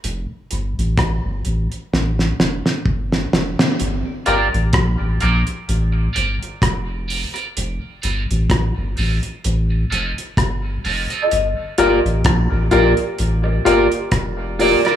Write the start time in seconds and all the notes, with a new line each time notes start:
0.04 F1, closed hi-hat
0.51 G1, closed hi-hat
0.78 A1, closed hi-hat
0.97 A1, kick, cross-stick, closed hi-hat
1.25 G1
1.45 A1, closed hi-hat
1.72 closed hi-hat
1.93 A1, snare
2.19 snare
2.40 F1, snare
2.66 snare
2.86 G1, kick
3.12 snare
3.33 F1, snare
3.59 snare
3.80 G1, closed hi-hat
4.05 G2 D3
4.26 G1 G3 A#3 F4 G4 A#4 D5, closed hi-hat
4.53 A1 G2 D3, closed hi-hat
4.73 A#1, kick, cross-stick, closed hi-hat
5.00 A1 G2 D3
5.20 A#1 G3 A#3 F4 G4 A#4 D5, closed hi-hat
5.46 G2 D3, closed hi-hat
5.69 A1, closed hi-hat
5.93 muted clean electric guitar stroke
6.13 G1 G3 A#3 F4 G4 A#4 D5, closed hi-hat
6.43 closed hi-hat
6.62 F1, kick, cross-stick, closed hi-hat
7.08 F4 G4 A#4 D5, open hi-hat
7.34 F4 A#4 D5, closed hi-hat
7.57 F1, closed hi-hat
8.02 G1 D#4 F4 A4 D#5, closed hi-hat
8.31 A1, closed hi-hat
8.50 A1, kick, cross-stick, closed hi-hat
8.78 G1
8.96 A1 D#4 F4 A4 D#5, open hi-hat
9.23 closed hi-hat
9.44 A1, closed hi-hat
9.71 muted clean electric guitar stroke
9.90 F1 D#4 F4 A4 D#5, closed hi-hat
10.18 closed hi-hat
10.37 G1, kick, cross-stick, closed hi-hat
10.84 F1 D#4 F4 A4 D#5, open hi-hat
11.10 F4 A4 D#5, closed hi-hat
11.31 G1, closed hi-hat
11.78 G1 F4 G4 A#4 D5, closed hi-hat
12.05 A1, closed hi-hat
12.24 A#1, kick, cross-stick, closed hi-hat
12.52 A1
12.71 A#1 F4 G4 A#4 D5, closed hi-hat
12.97 closed hi-hat
13.19 A1, closed hi-hat
13.44 muted clean electric guitar stroke
13.65 G1 F4 G4 A#4 D5, closed hi-hat
13.92 closed hi-hat
14.12 F1, kick, cross-stick, closed hi-hat
14.59 F4 G4 A#4 D5, open hi-hat
14.85 F4 A#4 D5, cross-stick, closed hi-hat